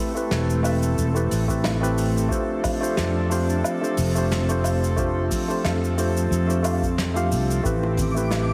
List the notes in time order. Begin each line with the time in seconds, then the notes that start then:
Already playing: A3 C4 E4 G4 A4 B4
0.15 A3 C4 E4 G4 B4, cabasa
0.31 E1, snare, cabasa
0.50 cabasa
0.63 A3 C4 E4 G4 B4, open hi-hat, cabasa, low woodblock
0.83 cabasa
0.98 E1, cabasa
1.14 A3 C4 E4 G4 B4, cabasa
1.31 A1, open hi-hat, cabasa
1.48 A3 C4 E4 G4 B4, kick, cabasa
1.64 snare, cabasa, low woodblock
1.81 A3 C4 E4 G4 B4, cabasa
1.98 open hi-hat, cabasa
2.18 cabasa
2.29 F3 A3 D4 F4 G4 C5, kick, cabasa
2.64 kick, open hi-hat, cabasa, low woodblock
2.80 A3 D4 F4 G4 C5, cabasa
2.97 F2, snare, cabasa
3.29 A3 D4 F4 G4 C5, open hi-hat, cabasa
3.50 cabasa
3.64 cabasa, low woodblock
3.81 A3 D4 F4 G4 C5, cabasa
3.97 F1, open hi-hat, cabasa
4.15 A3 D4 F4 G4 C5, cabasa
4.32 snare, cabasa
4.49 A3 D4 F4 G4 C5, cabasa
4.64 open hi-hat, cabasa, low woodblock
4.84 cabasa
4.96 A3 D4 F4 G4 C5, kick, cabasa
5.31 kick, open hi-hat, cabasa
5.48 A3 D4 F4 G4 C5, cabasa
5.64 F2, snare, cabasa, low woodblock
5.84 cabasa
5.97 A3 D4 F4 G4 C5, open hi-hat, cabasa
6.17 cabasa
6.31 F2, cabasa
6.47 A3 D4 F4 G4 C5, cabasa
6.63 A3 D4 F4 G4 F5, open hi-hat, cabasa, low woodblock
6.83 kick, cabasa
6.98 snare, cabasa
7.14 A3 D4 F4 G4 F5, cabasa
7.31 C2, open hi-hat, cabasa
7.51 cabasa
7.63 A1 A3 C4 E4 G4 B4 D6, kick, cabasa
7.83 high bongo
7.97 kick, open hi-hat, low conga, cabasa
8.14 A3 C4 E4 G4 B4, cabasa
8.31 snare, high bongo, cabasa, low woodblock